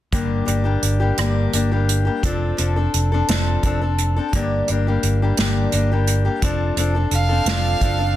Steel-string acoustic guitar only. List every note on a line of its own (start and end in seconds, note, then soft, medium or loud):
0.12 0.48 G2 medium
0.12 0.47 D3 medium
0.12 0.44 G3 medium
0.12 0.45 A#3 medium
0.12 0.45 D4 medium
0.12 0.47 G4 medium
0.45 0.64 G3 medium
0.45 0.64 A#3 medium
0.45 0.64 D4 medium
0.45 0.63 G4 medium
0.64 1.01 G3 soft
0.64 1.00 A#3 soft
0.64 0.99 D4 soft
0.64 0.99 G4 medium
1.00 1.17 G3 soft
1.00 1.18 A#3 soft
1.00 1.17 D4 soft
1.00 1.18 G4 medium
1.18 1.53 G2 medium
1.18 1.53 D3 medium
1.18 1.52 G3 medium
1.18 1.52 A#3 medium
1.18 1.53 D4 medium
1.18 1.54 G4 medium
1.53 1.70 G3 medium
1.53 1.71 A#3 medium
1.53 1.71 D4 medium
1.53 1.70 G4 medium
1.71 2.06 G3 soft
1.71 2.05 A#3 soft
1.71 2.05 D4 soft
1.71 2.04 G4 medium
2.05 2.23 G3 soft
2.05 2.23 A#3 soft
2.05 2.24 D4 soft
2.05 2.23 G4 medium
2.23 2.56 F3 medium
2.23 2.57 C4 medium
2.23 2.58 D4 medium
2.23 2.58 A4 medium
2.57 2.75 F3 medium
2.57 2.76 C4 medium
2.57 2.76 D4 medium
2.57 2.75 A4 medium
2.76 3.12 C4 soft
2.76 3.11 D4 soft
2.76 3.11 A4 medium
3.12 3.28 C4 soft
3.12 3.28 D4 medium
3.12 3.28 A4 medium
3.29 3.62 F3 medium
3.29 3.63 C4 medium
3.29 3.64 D4 medium
3.29 3.64 A4 medium
3.64 3.81 F3 medium
3.64 3.81 C4 medium
3.64 3.81 D4 medium
3.64 3.80 A4 medium
3.81 4.17 C4 soft
3.81 4.16 D4 soft
3.81 4.15 A4 medium
4.16 4.34 C4 soft
4.16 4.34 D4 medium
4.16 4.33 A4 medium
4.34 4.68 G2 medium
4.34 4.69 D3 medium
4.34 4.68 G3 medium
4.34 4.69 A#3 medium
4.34 4.69 D4 medium
4.34 4.69 G4 medium
4.69 4.86 G3 medium
4.69 4.86 A#3 medium
4.69 4.86 D4 medium
4.69 4.86 G4 medium
4.87 5.22 G3 soft
4.87 5.22 A#3 medium
4.87 5.21 D4 medium
4.87 5.21 G4 medium
5.22 5.38 G3 soft
5.22 5.38 A#3 soft
5.22 5.39 D4 soft
5.22 5.38 G4 medium
5.39 5.73 G2 medium
5.39 5.73 D3 medium
5.39 5.71 G3 medium
5.39 5.72 A#3 medium
5.39 5.73 D4 medium
5.39 5.74 G4 medium
5.73 5.90 G3 medium
5.73 5.90 A#3 medium
5.73 5.91 D4 medium
5.73 5.90 G4 medium
5.92 6.26 G3 soft
5.92 6.24 A#3 soft
5.92 6.24 D4 soft
5.92 6.24 G4 medium
6.25 6.42 G3 soft
6.25 6.42 A#3 soft
6.25 6.42 D4 soft
6.25 6.42 G4 medium
6.42 6.76 F3 medium
6.42 6.76 C4 medium
6.42 6.77 D4 medium
6.42 6.78 A4 medium
6.77 6.94 F3 medium
6.77 6.95 C4 medium
6.77 6.95 D4 medium
6.77 6.94 A4 medium
6.95 7.30 C4 soft
6.95 7.29 D4 medium
6.95 7.28 A4 medium
7.29 7.47 C4 soft
7.29 7.47 D4 soft
7.29 7.46 A4 medium
7.48 7.81 F3 medium
7.48 7.81 C4 medium
7.48 7.82 D4 medium
7.48 7.83 A4 medium
7.82 7.99 F3 medium
7.82 7.99 C4 medium
7.82 7.98 D4 medium
7.82 7.97 A4 medium
7.99 8.16 C4 soft
7.99 8.16 D4 medium
7.99 8.16 A4 medium